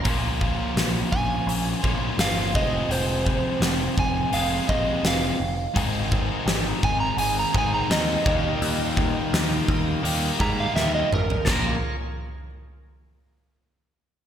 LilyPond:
<<
  \new Staff \with { instrumentName = "Electric slide guitar" } { \time 4/4 \key bes \dorian \tempo 4 = 84 r4. aes''4. f''8 ees''8 | c''4 r8 aes''8 f''8 ees''8 f''4~ | f''4 r8 aes''16 bes''16 aes''16 bes''16 aes''16 bes''16 ees''4~ | ees''4 r4. bes''16 f''16 e''16 ees''16 bes'8 |
r1 | }
  \new Staff \with { instrumentName = "Overdriven electric guitar" } { \time 4/4 \key bes \dorian r1 | r1 | r1 | r1 |
bes'8 r2. r8 | }
  \new Staff \with { instrumentName = "Tonewheel organ" } { \time 4/4 \key bes \dorian r1 | r1 | <bes ees' aes' c''>2.~ <bes ees' aes' c''>8 <bes f' g' ees''>8~ | <bes f' g' ees''>1 |
<bes f' aes' des''>8 r2. r8 | }
  \new Staff \with { instrumentName = "Distorted electric guitar" } { \time 4/4 \key bes \dorian <bes, f bes des' f'>2~ <bes, f bes des' f'>8 <bes, f bes des' f'>8 <bes, f bes des' f'>8 <f, c f aes c' aes'>8~ | <f, c f aes c' aes'>2 <f, c f aes c' aes'>8 <f, c f aes c' aes'>4 r8 | <aes, ees aes c' ees' aes'>2~ <aes, ees aes c' ees' aes'>8 <aes, ees aes c' ees' aes'>8 <aes, ees aes c' ees' aes'>8 <ees g bes ees' g'>8~ | <ees g bes ees' g'>2 <ees g bes ees' g'>8 <ees g bes ees' g'>4 r8 |
<bes, f bes des' f'>8 r2. r8 | }
  \new Staff \with { instrumentName = "Picked electric bass" } { \clef bass \time 4/4 \key bes \dorian bes,,4 bes,,8 bes,,8 bes,,8 bes,,8 g,,8 f,,8 | f,,4 f,,8 f,,8 f,,8 bes,,8 f,,8 f,,8 | aes,,4 aes,,8 aes,,8 aes,,8 aes,,8 ees,8 ees,8 | ees,4 ees,8 ees,8 ees,8 aes,8 ees,8 aes,,8 |
bes,,8 r2. r8 | }
  \new DrumStaff \with { instrumentName = "Drums" } \drummode { \time 4/4 <hho bd>8 bd8 <hho sn>8 bd8 hho8 bd8 <hho sn>8 bd8 | hho8 bd8 <hho sn>8 bd8 hho8 bd8 <hho sn>4 | <hho bd>8 bd8 <hho sn>8 bd8 hho8 bd8 <hho sn>8 bd8 | hho8 bd8 <hho sn>8 bd8 hho8 bd8 sn8 toml16 tomfh16 |
<cymc bd sn>4 r4 r4 r4 | }
>>